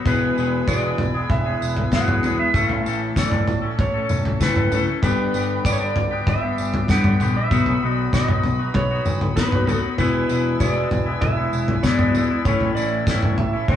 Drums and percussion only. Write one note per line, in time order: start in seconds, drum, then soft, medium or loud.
0.06 kick medium
0.06 floor tom medium
0.06 tambourine medium
0.38 tambourine soft
0.68 kick loud
0.68 tambourine medium
0.98 floor tom medium
0.98 tambourine soft
1.30 kick loud
1.30 floor tom medium
1.30 tambourine soft
1.62 tambourine medium
1.76 floor tom medium
1.92 kick medium
1.92 snare medium
1.92 mid tom medium
1.92 tambourine medium
2.08 floor tom medium
2.08 mid tom medium
2.23 floor tom medium
2.23 tambourine medium
2.54 kick loud
2.54 floor tom medium
2.54 tambourine medium
2.69 floor tom medium
2.86 tambourine medium
3.16 kick loud
3.16 snare medium
3.16 tambourine loud
3.31 floor tom medium
3.31 mid tom medium
3.48 floor tom medium
3.48 tambourine soft
3.79 kick loud
3.79 floor tom medium
3.79 tambourine soft
4.09 mid tom medium
4.09 tambourine medium
4.25 floor tom medium
4.41 kick loud
4.41 snare medium
4.41 tambourine medium
4.56 floor tom medium
4.56 mid tom medium
4.72 floor tom medium
4.72 tambourine medium
5.02 kick loud
5.02 floor tom medium
5.02 tambourine medium
5.34 tambourine medium
5.65 kick loud
5.65 tambourine loud
5.96 floor tom medium
5.96 tambourine soft
6.27 kick loud
6.27 floor tom medium
6.27 tambourine soft
6.58 tambourine medium
6.74 floor tom medium
6.88 kick loud
6.88 snare medium
6.88 mid tom medium
6.88 tambourine medium
7.04 floor tom medium
7.04 mid tom medium
7.20 floor tom medium
7.20 tambourine medium
7.51 kick loud
7.51 floor tom medium
7.51 tambourine medium
7.66 floor tom medium
8.13 kick loud
8.13 snare medium
8.13 tambourine medium
8.28 floor tom medium
8.28 mid tom medium
8.43 floor tom medium
8.43 tambourine soft
8.74 kick loud
8.74 floor tom medium
8.74 tambourine soft
9.06 mid tom medium
9.06 tambourine medium
9.21 floor tom medium
9.37 kick medium
9.37 snare medium
9.37 tambourine medium
9.52 floor tom medium
9.52 mid tom medium
9.67 floor tom medium
9.67 tambourine medium
9.98 kick medium
9.98 floor tom medium
9.98 tambourine medium
10.29 tambourine medium
10.60 kick loud
10.60 tambourine medium
10.91 floor tom medium
10.91 tambourine soft
11.22 kick loud
11.22 floor tom medium
11.22 tambourine soft
11.53 tambourine medium
11.68 floor tom medium
11.83 kick medium
11.83 snare medium
11.83 mid tom medium
11.83 tambourine medium
11.99 floor tom medium
11.99 mid tom medium
12.15 floor tom medium
12.15 tambourine medium
12.45 kick medium
12.45 floor tom medium
12.45 tambourine medium
12.61 floor tom medium
12.77 tambourine medium
13.07 kick loud
13.07 snare medium
13.07 tambourine medium
13.22 floor tom medium
13.22 mid tom medium
13.38 floor tom medium
13.68 kick loud
13.68 floor tom medium
13.68 tambourine soft